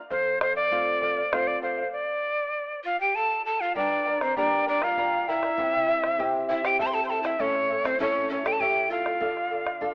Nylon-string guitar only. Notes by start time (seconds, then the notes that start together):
0.11 F2
0.71 A3 C4 F4
1.33 A3 C4 F4
3.76 G2
4.36 A#3 D4 G4
5.58 C3
6.18 C4 E4 G4
7.39 A2
8.00 C#4 E4 A4
9.21 D3
9.81 D4 F4 A4